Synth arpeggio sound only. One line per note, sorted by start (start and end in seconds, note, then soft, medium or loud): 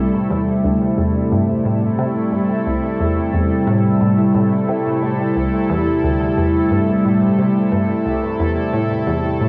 0.31 0.49 E2 loud
0.64 0.92 D2 medium
0.98 1.16 E2 medium
1.32 1.59 G2 medium
1.65 1.93 A2 medium
1.99 2.17 C3 medium
2.33 2.51 G2 medium
2.66 2.77 C2 medium
3.00 3.19 E2 medium
3.34 3.52 E2 medium
3.67 3.86 A2 loud
4.01 4.29 A2 medium
4.35 4.62 A2 medium
4.69 4.87 C3 medium
5.02 5.21 A2 medium
5.36 5.47 C2 medium
5.70 5.88 E2 loud
6.04 6.31 D2 medium
6.37 6.56 E2 medium
6.71 6.99 G2 medium
7.05 7.32 A2 medium
7.39 7.57 C3 medium
7.72 7.90 G2 medium
8.06 8.17 C2 medium
8.40 8.58 E2 medium
8.73 8.92 A2 medium
9.07 9.34 E2 medium
9.41 9.49 A2 medium